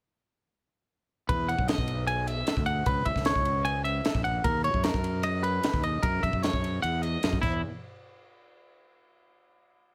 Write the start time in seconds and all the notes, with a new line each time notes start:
1.29 E2 B4, kick, ride
1.48 F#5, ride
1.59 B1, kick
1.68 D#5, snare, ride
1.78 B1, kick
1.88 ride
2.07 G#5, ride
2.27 E5, ride
2.47 snare, ride
2.57 D2, kick
2.66 F#5, ride
2.86 C#2 B4, kick, ride
3.05 C#2 E5, kick, ride
3.16 C#2, kick, snare
3.25 C#5, snare, ride
3.36 C#2, kick
3.45 ride
3.65 G#5, ride
3.84 E5, ride
4.05 snare, ride
4.15 A#1, kick
4.24 F#5, ride
4.44 D#2 A#4, kick, ride
4.64 C#5, ride
4.74 F#2, kick
4.84 A#4, snare, ride
4.94 F#2, kick
5.04 ride
5.23 D#5, ride
5.43 B4, ride
5.63 snare, ride
5.73 D#2, kick
5.83 D#5, ride
6.03 F#2 A#4, kick, ride
6.23 F#2 E5, kick, ride
6.33 F#2, kick
6.42 C#5, snare, ride
6.53 F#2, kick
6.64 ride
6.82 E2 F#5, ride
7.02 D#5, ride
7.23 F#2, snare, ride
7.33 kick
7.42 E2 E4, kick, crash